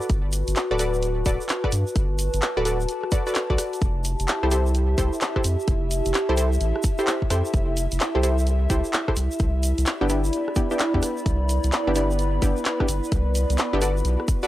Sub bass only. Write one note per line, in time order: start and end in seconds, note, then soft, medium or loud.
0.10 0.43 G1 medium
0.48 0.54 G1 loud
0.71 1.23 D1 medium
1.26 1.38 D1 medium
1.72 1.84 G2 medium
1.96 2.29 G1 medium
2.34 2.40 G1 loud
2.57 2.86 D1 medium
3.50 3.57 B1 loud
3.82 4.15 F1 medium
4.20 4.26 F1 loud
4.43 4.95 C2 medium
4.98 5.10 C2 medium
5.44 5.56 F2 medium
5.68 6.01 F1 medium
6.06 6.12 F1 loud
6.29 6.58 C2 medium
6.61 6.73 A1 medium
7.30 7.42 F2 loud
7.54 7.87 F1 loud
7.92 7.99 F1 loud
8.15 8.67 C2 medium
8.70 8.82 C2 medium
9.17 9.28 C2 medium
9.40 9.73 C2 medium
9.78 9.85 C2 loud
10.01 10.30 G1 medium
10.94 11.01 E2 loud
11.26 11.59 C2 medium
11.64 11.71 C2 loud
11.87 12.39 G1 medium
12.42 12.54 G1 medium
12.89 13.01 G1 medium
13.12 13.45 C2 medium
13.50 13.57 C2 loud
13.73 14.02 G1 medium
14.05 14.17 B1 loud